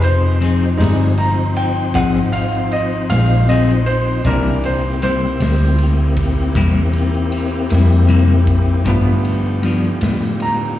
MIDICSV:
0, 0, Header, 1, 6, 480
1, 0, Start_track
1, 0, Tempo, 768246
1, 2658, Time_signature, 12, 3, 24, 8
1, 6743, End_track
2, 0, Start_track
2, 0, Title_t, "Grand piano"
2, 0, Program_c, 0, 0
2, 0, Note_on_c, 0, 56, 42
2, 0, Note_on_c, 0, 63, 52
2, 0, Note_on_c, 0, 67, 52
2, 23, Note_on_c, 0, 72, 78
2, 253, Note_off_c, 0, 72, 0
2, 467, Note_off_c, 0, 67, 0
2, 468, Note_off_c, 0, 56, 0
2, 471, Note_off_c, 0, 63, 0
2, 483, Note_on_c, 0, 55, 37
2, 484, Note_on_c, 0, 63, 47
2, 485, Note_on_c, 0, 56, 41
2, 705, Note_off_c, 0, 55, 0
2, 706, Note_off_c, 0, 56, 0
2, 706, Note_off_c, 0, 63, 0
2, 740, Note_on_c, 0, 82, 66
2, 972, Note_off_c, 0, 82, 0
2, 980, Note_on_c, 0, 79, 65
2, 1211, Note_off_c, 0, 79, 0
2, 1219, Note_on_c, 0, 78, 71
2, 1451, Note_off_c, 0, 78, 0
2, 1453, Note_on_c, 0, 77, 61
2, 1688, Note_off_c, 0, 77, 0
2, 1703, Note_on_c, 0, 75, 62
2, 1933, Note_off_c, 0, 75, 0
2, 1935, Note_on_c, 0, 77, 72
2, 2169, Note_off_c, 0, 77, 0
2, 2180, Note_on_c, 0, 75, 65
2, 2412, Note_off_c, 0, 75, 0
2, 2414, Note_on_c, 0, 72, 69
2, 2648, Note_off_c, 0, 72, 0
2, 2650, Note_on_c, 0, 52, 46
2, 2655, Note_on_c, 0, 58, 42
2, 2659, Note_on_c, 0, 62, 48
2, 2665, Note_on_c, 0, 70, 73
2, 2894, Note_off_c, 0, 70, 0
2, 2908, Note_on_c, 0, 72, 65
2, 2973, Note_off_c, 0, 52, 0
2, 2976, Note_off_c, 0, 58, 0
2, 2977, Note_off_c, 0, 62, 0
2, 3134, Note_off_c, 0, 72, 0
2, 3143, Note_on_c, 0, 72, 76
2, 3606, Note_off_c, 0, 72, 0
2, 5539, Note_on_c, 0, 53, 41
2, 5543, Note_on_c, 0, 57, 41
2, 5547, Note_on_c, 0, 59, 53
2, 6232, Note_off_c, 0, 53, 0
2, 6234, Note_off_c, 0, 57, 0
2, 6236, Note_off_c, 0, 59, 0
2, 6512, Note_on_c, 0, 82, 61
2, 6736, Note_off_c, 0, 82, 0
2, 6743, End_track
3, 0, Start_track
3, 0, Title_t, "Tonewheel organ"
3, 0, Program_c, 1, 16
3, 0, Note_on_c, 1, 53, 78
3, 0, Note_on_c, 1, 60, 65
3, 0, Note_on_c, 1, 63, 63
3, 0, Note_on_c, 1, 72, 71
3, 2634, Note_off_c, 1, 53, 0
3, 2634, Note_off_c, 1, 72, 0
3, 2637, Note_off_c, 1, 63, 0
3, 2638, Note_off_c, 1, 60, 0
3, 2663, Note_on_c, 1, 58, 74
3, 2664, Note_on_c, 1, 67, 73
3, 2665, Note_on_c, 1, 60, 69
3, 2667, Note_on_c, 1, 64, 73
3, 5514, Note_off_c, 1, 58, 0
3, 5514, Note_off_c, 1, 67, 0
3, 5515, Note_off_c, 1, 60, 0
3, 5516, Note_off_c, 1, 64, 0
3, 5532, Note_on_c, 1, 67, 76
3, 5535, Note_on_c, 1, 65, 63
3, 5536, Note_on_c, 1, 50, 70
3, 5537, Note_on_c, 1, 59, 67
3, 6743, Note_off_c, 1, 50, 0
3, 6743, Note_off_c, 1, 59, 0
3, 6743, Note_off_c, 1, 65, 0
3, 6743, Note_off_c, 1, 67, 0
3, 6743, End_track
4, 0, Start_track
4, 0, Title_t, "Clean electric guitar"
4, 0, Program_c, 2, 27
4, 253, Note_on_c, 2, 53, 57
4, 257, Note_on_c, 2, 60, 60
4, 262, Note_on_c, 2, 63, 60
4, 269, Note_on_c, 2, 68, 59
4, 399, Note_off_c, 2, 53, 0
4, 401, Note_off_c, 2, 60, 0
4, 404, Note_off_c, 2, 63, 0
4, 407, Note_off_c, 2, 68, 0
4, 489, Note_on_c, 2, 68, 56
4, 498, Note_on_c, 2, 63, 54
4, 506, Note_on_c, 2, 60, 43
4, 637, Note_off_c, 2, 68, 0
4, 642, Note_off_c, 2, 63, 0
4, 645, Note_off_c, 2, 60, 0
4, 1215, Note_on_c, 2, 53, 88
4, 1215, Note_on_c, 2, 60, 76
4, 1220, Note_on_c, 2, 63, 78
4, 1225, Note_on_c, 2, 68, 88
4, 1360, Note_off_c, 2, 53, 0
4, 1360, Note_off_c, 2, 60, 0
4, 1363, Note_off_c, 2, 63, 0
4, 1365, Note_off_c, 2, 68, 0
4, 1935, Note_on_c, 2, 68, 50
4, 1942, Note_on_c, 2, 63, 45
4, 1949, Note_on_c, 2, 60, 42
4, 2080, Note_off_c, 2, 68, 0
4, 2084, Note_off_c, 2, 63, 0
4, 2087, Note_off_c, 2, 60, 0
4, 2179, Note_on_c, 2, 53, 56
4, 2182, Note_on_c, 2, 60, 59
4, 2189, Note_on_c, 2, 63, 66
4, 2194, Note_on_c, 2, 68, 68
4, 2323, Note_off_c, 2, 53, 0
4, 2324, Note_off_c, 2, 60, 0
4, 2327, Note_off_c, 2, 63, 0
4, 2330, Note_off_c, 2, 68, 0
4, 2658, Note_on_c, 2, 48, 77
4, 2660, Note_on_c, 2, 55, 72
4, 2664, Note_on_c, 2, 58, 74
4, 2669, Note_on_c, 2, 64, 70
4, 2802, Note_off_c, 2, 48, 0
4, 2803, Note_off_c, 2, 55, 0
4, 2805, Note_off_c, 2, 58, 0
4, 2807, Note_off_c, 2, 64, 0
4, 3137, Note_on_c, 2, 48, 58
4, 3140, Note_on_c, 2, 55, 60
4, 3150, Note_on_c, 2, 58, 62
4, 3151, Note_on_c, 2, 64, 58
4, 3281, Note_off_c, 2, 48, 0
4, 3283, Note_off_c, 2, 55, 0
4, 3288, Note_off_c, 2, 58, 0
4, 3288, Note_off_c, 2, 64, 0
4, 3377, Note_on_c, 2, 64, 42
4, 3387, Note_on_c, 2, 58, 46
4, 3394, Note_on_c, 2, 55, 41
4, 3521, Note_off_c, 2, 64, 0
4, 3526, Note_off_c, 2, 58, 0
4, 3530, Note_off_c, 2, 55, 0
4, 4096, Note_on_c, 2, 48, 91
4, 4096, Note_on_c, 2, 55, 100
4, 4101, Note_on_c, 2, 58, 98
4, 4105, Note_on_c, 2, 64, 99
4, 4240, Note_off_c, 2, 48, 0
4, 4241, Note_off_c, 2, 55, 0
4, 4243, Note_off_c, 2, 58, 0
4, 4245, Note_off_c, 2, 64, 0
4, 4807, Note_on_c, 2, 64, 54
4, 4816, Note_on_c, 2, 58, 53
4, 4824, Note_on_c, 2, 55, 47
4, 4956, Note_off_c, 2, 64, 0
4, 4960, Note_off_c, 2, 58, 0
4, 4964, Note_off_c, 2, 55, 0
4, 5043, Note_on_c, 2, 48, 61
4, 5051, Note_on_c, 2, 55, 58
4, 5055, Note_on_c, 2, 58, 60
4, 5060, Note_on_c, 2, 64, 66
4, 5194, Note_off_c, 2, 48, 0
4, 5198, Note_off_c, 2, 55, 0
4, 5200, Note_off_c, 2, 58, 0
4, 5202, Note_off_c, 2, 64, 0
4, 5526, Note_on_c, 2, 43, 84
4, 5530, Note_on_c, 2, 53, 78
4, 5534, Note_on_c, 2, 59, 85
4, 5535, Note_on_c, 2, 62, 75
4, 5675, Note_off_c, 2, 43, 0
4, 5677, Note_off_c, 2, 53, 0
4, 5679, Note_off_c, 2, 59, 0
4, 5680, Note_off_c, 2, 62, 0
4, 6012, Note_on_c, 2, 43, 63
4, 6017, Note_on_c, 2, 53, 67
4, 6026, Note_on_c, 2, 59, 66
4, 6028, Note_on_c, 2, 62, 58
4, 6158, Note_off_c, 2, 43, 0
4, 6160, Note_off_c, 2, 53, 0
4, 6165, Note_off_c, 2, 59, 0
4, 6166, Note_off_c, 2, 62, 0
4, 6259, Note_on_c, 2, 62, 53
4, 6266, Note_on_c, 2, 59, 51
4, 6274, Note_on_c, 2, 53, 45
4, 6401, Note_off_c, 2, 62, 0
4, 6404, Note_off_c, 2, 59, 0
4, 6409, Note_off_c, 2, 53, 0
4, 6743, End_track
5, 0, Start_track
5, 0, Title_t, "Fingered electric bass"
5, 0, Program_c, 3, 33
5, 0, Note_on_c, 3, 29, 86
5, 476, Note_off_c, 3, 29, 0
5, 498, Note_on_c, 3, 31, 91
5, 1196, Note_off_c, 3, 31, 0
5, 1212, Note_on_c, 3, 32, 84
5, 1913, Note_off_c, 3, 32, 0
5, 1940, Note_on_c, 3, 34, 85
5, 2637, Note_off_c, 3, 34, 0
5, 2655, Note_on_c, 3, 36, 86
5, 3354, Note_off_c, 3, 36, 0
5, 3376, Note_on_c, 3, 38, 91
5, 4075, Note_off_c, 3, 38, 0
5, 4094, Note_on_c, 3, 40, 76
5, 4794, Note_off_c, 3, 40, 0
5, 4820, Note_on_c, 3, 41, 92
5, 5516, Note_off_c, 3, 41, 0
5, 5535, Note_on_c, 3, 43, 89
5, 6233, Note_off_c, 3, 43, 0
5, 6260, Note_on_c, 3, 45, 92
5, 6743, Note_off_c, 3, 45, 0
5, 6743, End_track
6, 0, Start_track
6, 0, Title_t, "Drums"
6, 13, Note_on_c, 9, 51, 53
6, 76, Note_off_c, 9, 51, 0
6, 259, Note_on_c, 9, 51, 54
6, 322, Note_off_c, 9, 51, 0
6, 502, Note_on_c, 9, 51, 84
6, 514, Note_on_c, 9, 38, 121
6, 564, Note_off_c, 9, 51, 0
6, 577, Note_off_c, 9, 38, 0
6, 734, Note_on_c, 9, 51, 60
6, 796, Note_off_c, 9, 51, 0
6, 977, Note_on_c, 9, 51, 56
6, 1039, Note_off_c, 9, 51, 0
6, 1213, Note_on_c, 9, 36, 97
6, 1217, Note_on_c, 9, 51, 76
6, 1276, Note_off_c, 9, 36, 0
6, 1279, Note_off_c, 9, 51, 0
6, 1456, Note_on_c, 9, 51, 57
6, 1519, Note_off_c, 9, 51, 0
6, 1696, Note_on_c, 9, 51, 49
6, 1758, Note_off_c, 9, 51, 0
6, 1936, Note_on_c, 9, 51, 80
6, 1949, Note_on_c, 9, 38, 113
6, 1998, Note_off_c, 9, 51, 0
6, 2011, Note_off_c, 9, 38, 0
6, 2179, Note_on_c, 9, 51, 57
6, 2242, Note_off_c, 9, 51, 0
6, 2416, Note_on_c, 9, 51, 53
6, 2478, Note_off_c, 9, 51, 0
6, 2654, Note_on_c, 9, 36, 99
6, 2660, Note_on_c, 9, 51, 64
6, 2717, Note_off_c, 9, 36, 0
6, 2723, Note_off_c, 9, 51, 0
6, 2896, Note_on_c, 9, 51, 54
6, 2958, Note_off_c, 9, 51, 0
6, 3137, Note_on_c, 9, 51, 60
6, 3199, Note_off_c, 9, 51, 0
6, 3375, Note_on_c, 9, 51, 91
6, 3388, Note_on_c, 9, 38, 114
6, 3438, Note_off_c, 9, 51, 0
6, 3450, Note_off_c, 9, 38, 0
6, 3614, Note_on_c, 9, 51, 66
6, 3676, Note_off_c, 9, 51, 0
6, 3854, Note_on_c, 9, 36, 80
6, 3854, Note_on_c, 9, 51, 66
6, 3916, Note_off_c, 9, 36, 0
6, 3916, Note_off_c, 9, 51, 0
6, 4094, Note_on_c, 9, 36, 99
6, 4096, Note_on_c, 9, 51, 88
6, 4156, Note_off_c, 9, 36, 0
6, 4159, Note_off_c, 9, 51, 0
6, 4330, Note_on_c, 9, 51, 60
6, 4392, Note_off_c, 9, 51, 0
6, 4572, Note_on_c, 9, 51, 61
6, 4635, Note_off_c, 9, 51, 0
6, 4811, Note_on_c, 9, 51, 79
6, 4824, Note_on_c, 9, 38, 107
6, 4874, Note_off_c, 9, 51, 0
6, 4886, Note_off_c, 9, 38, 0
6, 5052, Note_on_c, 9, 51, 60
6, 5115, Note_off_c, 9, 51, 0
6, 5293, Note_on_c, 9, 36, 77
6, 5293, Note_on_c, 9, 51, 58
6, 5356, Note_off_c, 9, 36, 0
6, 5356, Note_off_c, 9, 51, 0
6, 5534, Note_on_c, 9, 51, 75
6, 5535, Note_on_c, 9, 36, 95
6, 5596, Note_off_c, 9, 51, 0
6, 5597, Note_off_c, 9, 36, 0
6, 5777, Note_on_c, 9, 51, 51
6, 5840, Note_off_c, 9, 51, 0
6, 6016, Note_on_c, 9, 51, 59
6, 6079, Note_off_c, 9, 51, 0
6, 6254, Note_on_c, 9, 51, 78
6, 6267, Note_on_c, 9, 38, 116
6, 6317, Note_off_c, 9, 51, 0
6, 6329, Note_off_c, 9, 38, 0
6, 6497, Note_on_c, 9, 51, 55
6, 6559, Note_off_c, 9, 51, 0
6, 6743, End_track
0, 0, End_of_file